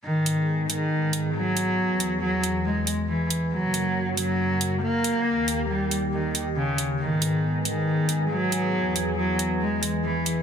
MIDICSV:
0, 0, Header, 1, 4, 480
1, 0, Start_track
1, 0, Key_signature, 5, "minor"
1, 0, Tempo, 434783
1, 49, Time_signature, 4, 2, 24, 8
1, 11510, End_track
2, 0, Start_track
2, 0, Title_t, "Cello"
2, 0, Program_c, 0, 42
2, 48, Note_on_c, 0, 51, 97
2, 673, Note_off_c, 0, 51, 0
2, 769, Note_on_c, 0, 51, 92
2, 1393, Note_off_c, 0, 51, 0
2, 1489, Note_on_c, 0, 54, 98
2, 2354, Note_off_c, 0, 54, 0
2, 2448, Note_on_c, 0, 54, 93
2, 2711, Note_off_c, 0, 54, 0
2, 2928, Note_on_c, 0, 56, 86
2, 3191, Note_off_c, 0, 56, 0
2, 3409, Note_on_c, 0, 52, 89
2, 3671, Note_off_c, 0, 52, 0
2, 3888, Note_on_c, 0, 54, 98
2, 4513, Note_off_c, 0, 54, 0
2, 4608, Note_on_c, 0, 54, 95
2, 5233, Note_off_c, 0, 54, 0
2, 5328, Note_on_c, 0, 58, 99
2, 6193, Note_off_c, 0, 58, 0
2, 6289, Note_on_c, 0, 55, 87
2, 6552, Note_off_c, 0, 55, 0
2, 6769, Note_on_c, 0, 51, 83
2, 7031, Note_off_c, 0, 51, 0
2, 7249, Note_on_c, 0, 49, 85
2, 7511, Note_off_c, 0, 49, 0
2, 7728, Note_on_c, 0, 51, 98
2, 8353, Note_off_c, 0, 51, 0
2, 8448, Note_on_c, 0, 51, 94
2, 9073, Note_off_c, 0, 51, 0
2, 9168, Note_on_c, 0, 54, 97
2, 10033, Note_off_c, 0, 54, 0
2, 10129, Note_on_c, 0, 54, 90
2, 10392, Note_off_c, 0, 54, 0
2, 10609, Note_on_c, 0, 56, 85
2, 10871, Note_off_c, 0, 56, 0
2, 11089, Note_on_c, 0, 52, 90
2, 11351, Note_off_c, 0, 52, 0
2, 11510, End_track
3, 0, Start_track
3, 0, Title_t, "Analog synth pad"
3, 0, Program_c, 1, 89
3, 49, Note_on_c, 1, 44, 77
3, 49, Note_on_c, 1, 51, 69
3, 49, Note_on_c, 1, 59, 72
3, 49, Note_on_c, 1, 68, 84
3, 1949, Note_off_c, 1, 51, 0
3, 1950, Note_off_c, 1, 44, 0
3, 1969, Note_on_c, 1, 40, 78
3, 1969, Note_on_c, 1, 52, 71
3, 3850, Note_off_c, 1, 59, 0
3, 3850, Note_off_c, 1, 68, 0
3, 3869, Note_off_c, 1, 40, 0
3, 3870, Note_off_c, 1, 52, 0
3, 3888, Note_on_c, 1, 42, 77
3, 3888, Note_on_c, 1, 58, 69
3, 3888, Note_on_c, 1, 66, 87
3, 3889, Note_on_c, 1, 49, 70
3, 5789, Note_off_c, 1, 42, 0
3, 5789, Note_off_c, 1, 49, 0
3, 5789, Note_off_c, 1, 66, 0
3, 5808, Note_on_c, 1, 51, 68
3, 5808, Note_on_c, 1, 67, 86
3, 5809, Note_on_c, 1, 39, 74
3, 7690, Note_off_c, 1, 58, 0
3, 7709, Note_off_c, 1, 39, 0
3, 7709, Note_off_c, 1, 51, 0
3, 7709, Note_off_c, 1, 67, 0
3, 7729, Note_on_c, 1, 44, 78
3, 7729, Note_on_c, 1, 51, 70
3, 7729, Note_on_c, 1, 59, 73
3, 7729, Note_on_c, 1, 68, 86
3, 9630, Note_off_c, 1, 44, 0
3, 9630, Note_off_c, 1, 51, 0
3, 9649, Note_on_c, 1, 40, 76
3, 9650, Note_on_c, 1, 52, 69
3, 11510, Note_off_c, 1, 40, 0
3, 11510, Note_off_c, 1, 52, 0
3, 11510, Note_off_c, 1, 59, 0
3, 11510, Note_off_c, 1, 68, 0
3, 11510, End_track
4, 0, Start_track
4, 0, Title_t, "Drums"
4, 289, Note_on_c, 9, 42, 78
4, 399, Note_off_c, 9, 42, 0
4, 769, Note_on_c, 9, 42, 74
4, 879, Note_off_c, 9, 42, 0
4, 1249, Note_on_c, 9, 42, 83
4, 1359, Note_off_c, 9, 42, 0
4, 1729, Note_on_c, 9, 42, 77
4, 1839, Note_off_c, 9, 42, 0
4, 2209, Note_on_c, 9, 42, 81
4, 2319, Note_off_c, 9, 42, 0
4, 2689, Note_on_c, 9, 42, 76
4, 2799, Note_off_c, 9, 42, 0
4, 3169, Note_on_c, 9, 42, 78
4, 3279, Note_off_c, 9, 42, 0
4, 3648, Note_on_c, 9, 42, 76
4, 3759, Note_off_c, 9, 42, 0
4, 4128, Note_on_c, 9, 42, 78
4, 4239, Note_off_c, 9, 42, 0
4, 4608, Note_on_c, 9, 42, 74
4, 4718, Note_off_c, 9, 42, 0
4, 5088, Note_on_c, 9, 42, 75
4, 5199, Note_off_c, 9, 42, 0
4, 5569, Note_on_c, 9, 42, 74
4, 5679, Note_off_c, 9, 42, 0
4, 6049, Note_on_c, 9, 42, 73
4, 6159, Note_off_c, 9, 42, 0
4, 6529, Note_on_c, 9, 42, 70
4, 6639, Note_off_c, 9, 42, 0
4, 7009, Note_on_c, 9, 42, 74
4, 7119, Note_off_c, 9, 42, 0
4, 7489, Note_on_c, 9, 42, 72
4, 7599, Note_off_c, 9, 42, 0
4, 7969, Note_on_c, 9, 42, 73
4, 8079, Note_off_c, 9, 42, 0
4, 8449, Note_on_c, 9, 42, 68
4, 8560, Note_off_c, 9, 42, 0
4, 8929, Note_on_c, 9, 42, 71
4, 9039, Note_off_c, 9, 42, 0
4, 9409, Note_on_c, 9, 42, 71
4, 9519, Note_off_c, 9, 42, 0
4, 9888, Note_on_c, 9, 42, 77
4, 9999, Note_off_c, 9, 42, 0
4, 10369, Note_on_c, 9, 42, 76
4, 10479, Note_off_c, 9, 42, 0
4, 10848, Note_on_c, 9, 42, 75
4, 10959, Note_off_c, 9, 42, 0
4, 11329, Note_on_c, 9, 42, 75
4, 11439, Note_off_c, 9, 42, 0
4, 11510, End_track
0, 0, End_of_file